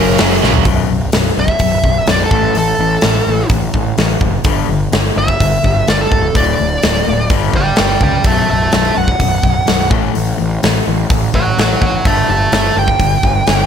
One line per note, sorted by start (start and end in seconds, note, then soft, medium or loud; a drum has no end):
0.00 0.15 F#1 medium
0.00 0.17 F#2 medium
0.00 0.64 F#2 medium
0.00 0.18 C#3 loud
0.00 0.65 C#3 medium
0.00 0.19 F#3 medium
0.00 0.66 F#3 loud
0.00 0.15 A#4 medium
0.18 0.40 F#1 medium
0.18 0.41 F#2 medium
0.18 0.41 C#3 medium
0.18 0.42 F#3 loud
0.18 snare loud
0.18 open hi-hat medium
0.32 snare soft
0.42 0.63 A#1 medium
0.42 0.64 F#2 medium
0.42 0.64 C#3 medium
0.42 0.65 F#3 medium
0.42 snare medium
0.54 floor tom medium
0.65 0.82 B0 medium
0.65 0.88 B1 medium
0.65 0.88 F#2 medium
0.65 0.88 B2 medium
0.65 kick loud
0.65 open hi-hat medium
0.89 1.07 B0 medium
0.89 1.11 B1 medium
0.89 1.11 F#2 medium
1.12 1.30 B0 medium
1.12 1.35 B1 medium
1.12 1.35 F#2 medium
1.12 snare loud
1.12 open hi-hat medium
1.37 1.54 B0 medium
1.37 1.58 B1 medium
1.37 1.59 F#2 medium
1.37 2.07 E5 medium
1.48 kick medium
1.59 1.77 B0 medium
1.59 1.82 B1 medium
1.59 1.82 F#2 medium
1.59 kick medium
1.59 open hi-hat medium
1.83 2.00 B0 medium
1.83 2.05 B1 medium
1.83 2.06 F#2 medium
1.83 kick medium
2.07 2.25 B0 medium
2.07 2.29 B1 medium
2.07 2.29 F#2 medium
2.07 snare loud
2.07 open hi-hat medium
2.11 2.21 D5 medium
2.24 2.56 A4 medium
2.31 2.48 A1 medium
2.31 2.54 A2 medium
2.31 2.55 E3 medium
2.31 2.55 A3 medium
2.31 kick loud
2.55 2.72 A1 medium
2.55 2.77 A2 medium
2.55 2.78 E3 medium
2.55 3.49 A4 medium
2.55 open hi-hat medium
2.79 2.96 A1 medium
2.79 3.01 A2 medium
2.79 3.01 E3 medium
3.01 3.20 A1 medium
3.01 3.25 A2 medium
3.01 3.25 E3 medium
3.01 snare loud
3.01 open hi-hat medium
3.27 3.43 A1 medium
3.27 3.49 A2 medium
3.27 3.49 E3 medium
3.49 3.67 A1 medium
3.49 3.72 A2 medium
3.49 3.72 E3 medium
3.49 kick loud
3.49 open hi-hat medium
3.74 3.91 A1 medium
3.74 3.96 A2 medium
3.74 3.96 E3 medium
3.74 kick medium
3.98 4.14 A1 medium
3.98 4.19 A2 medium
3.98 4.19 E3 medium
3.98 snare loud
3.98 open hi-hat medium
4.21 4.38 F#1 medium
4.21 4.43 A2 medium
4.21 4.43 E3 medium
4.21 kick medium
4.44 4.61 G1 medium
4.44 4.67 G2 medium
4.44 4.68 D3 loud
4.44 4.68 G3 loud
4.44 kick loud
4.44 open hi-hat medium
4.69 4.86 G1 medium
4.69 4.91 G2 medium
4.69 4.91 D3 medium
4.92 5.09 G1 medium
4.92 5.14 G2 medium
4.92 5.14 D3 medium
4.92 snare loud
4.92 open hi-hat medium
5.16 5.33 G1 medium
5.16 5.38 G2 medium
5.16 5.38 D3 medium
5.16 5.86 E5 loud
5.28 kick medium
5.40 5.57 G1 medium
5.40 5.62 G2 medium
5.40 5.62 D3 medium
5.40 kick medium
5.40 open hi-hat medium
5.64 5.81 G1 medium
5.64 5.85 G2 medium
5.64 5.86 D3 medium
5.64 kick medium
5.87 6.05 G1 medium
5.87 6.09 G2 medium
5.87 6.09 D3 medium
5.87 6.00 D5 medium
5.87 snare loud
5.87 open hi-hat medium
6.01 6.35 A4 medium
6.11 6.28 C#1 medium
6.11 6.33 G2 medium
6.11 6.33 D3 medium
6.11 kick medium
6.34 6.52 D1 medium
6.34 6.57 D2 medium
6.34 6.57 A2 medium
6.34 6.58 D3 medium
6.34 7.28 D5 medium
6.34 kick loud
6.34 open hi-hat medium
6.59 6.77 D1 medium
6.59 6.80 D2 medium
6.59 6.80 A2 medium
6.83 7.00 D1 medium
6.83 7.04 D2 medium
6.83 7.05 A2 medium
6.83 snare loud
6.83 open hi-hat medium
7.07 7.24 D1 medium
7.07 7.28 D2 medium
7.07 7.28 A2 medium
7.30 7.47 G1 medium
7.30 7.52 G2 medium
7.30 7.53 D3 medium
7.30 7.53 G3 medium
7.30 kick loud
7.30 open hi-hat medium
7.53 7.70 G1 medium
7.53 7.76 G2 medium
7.53 7.76 D3 medium
7.53 7.79 D5 medium
7.53 7.79 G5 medium
7.53 kick medium
7.76 7.95 G1 medium
7.76 7.99 G2 medium
7.76 8.00 D3 medium
7.76 8.01 D5 medium
7.76 snare loud
7.76 open hi-hat medium
7.80 8.02 G5 medium
8.01 8.18 C#2 medium
8.01 8.23 G2 medium
8.01 8.24 D3 medium
8.01 8.25 D5 medium
8.01 8.26 G5 medium
8.01 kick medium
8.24 8.41 B0 medium
8.24 8.47 B1 medium
8.24 8.48 F#2 medium
8.24 8.48 E5 medium
8.24 8.49 A5 medium
8.24 kick loud
8.24 open hi-hat medium
8.28 8.49 B2 medium
8.49 8.67 B0 medium
8.49 8.70 B1 medium
8.49 8.70 F#2 medium
8.49 8.72 E5 medium
8.49 8.73 A5 medium
8.72 8.90 B0 medium
8.72 8.94 B1 medium
8.72 8.94 F#2 medium
8.72 8.95 E5 medium
8.72 8.97 A5 medium
8.72 snare loud
8.72 open hi-hat medium
8.95 9.14 B0 medium
8.95 9.17 B1 medium
8.95 9.17 F#2 medium
8.95 9.89 F#5 loud
9.08 kick medium
9.19 9.37 B0 medium
9.19 9.41 B1 medium
9.19 9.42 F#2 medium
9.19 kick loud
9.19 open hi-hat medium
9.43 9.60 B0 medium
9.43 9.65 B1 medium
9.43 9.65 F#2 medium
9.43 kick medium
9.66 9.91 B0 medium
9.66 9.88 B1 medium
9.66 9.89 F#2 medium
9.66 snare loud
9.66 open hi-hat medium
9.90 10.08 A1 medium
9.90 10.13 A2 medium
9.90 10.13 E3 medium
9.90 10.14 A3 medium
9.90 kick medium
10.14 10.33 A1 medium
10.14 10.36 A2 medium
10.14 10.36 E3 medium
10.14 open hi-hat medium
10.38 10.57 A1 medium
10.38 10.60 A2 medium
10.38 10.60 E3 medium
10.63 10.80 A1 medium
10.63 10.84 A2 medium
10.63 10.84 E3 medium
10.63 snare loud
10.63 open hi-hat medium
10.87 11.04 A1 medium
10.87 11.08 A2 medium
10.87 11.08 E3 medium
11.10 11.27 A1 medium
11.10 11.32 A2 medium
11.10 11.32 E3 medium
11.10 kick loud
11.10 open hi-hat medium
11.34 11.50 A1 medium
11.34 11.55 A2 medium
11.34 11.56 E3 medium
11.34 11.58 C#5 medium
11.34 11.58 F#5 medium
11.34 kick medium
11.58 11.75 A1 medium
11.58 11.79 A2 medium
11.58 11.79 E3 medium
11.58 11.80 C#5 medium
11.58 11.81 F#5 medium
11.58 snare loud
11.58 open hi-hat medium
11.82 11.98 A1 medium
11.82 12.03 A2 medium
11.82 12.03 E3 medium
11.82 12.04 C#5 medium
11.82 12.05 F#5 medium
11.82 kick medium
12.05 12.22 G1 medium
12.05 12.27 G2 medium
12.05 12.28 D3 medium
12.05 12.28 G3 loud
12.05 12.28 E5 medium
12.05 12.29 A5 medium
12.05 kick loud
12.05 open hi-hat medium
12.29 12.45 G1 medium
12.29 12.50 G2 medium
12.29 12.50 D3 medium
12.29 12.52 E5 medium
12.29 12.52 A5 medium
12.52 12.69 G1 medium
12.52 12.74 G2 medium
12.52 12.74 D3 medium
12.52 12.75 E5 medium
12.52 12.76 A5 medium
12.52 snare loud
12.52 open hi-hat medium
12.76 12.93 G1 medium
12.76 12.98 G2 medium
12.76 12.98 D3 medium
12.76 13.66 G5 medium
12.88 kick medium
12.99 13.16 G1 medium
12.99 13.21 G2 medium
12.99 13.21 D3 medium
12.99 kick medium
12.99 open hi-hat medium
13.23 13.40 G1 medium
13.23 13.45 G2 medium
13.23 13.45 D3 medium
13.23 kick medium
13.47 13.64 G1 medium
13.47 13.66 G2 medium
13.47 13.66 D3 medium
13.47 snare loud
13.47 open hi-hat medium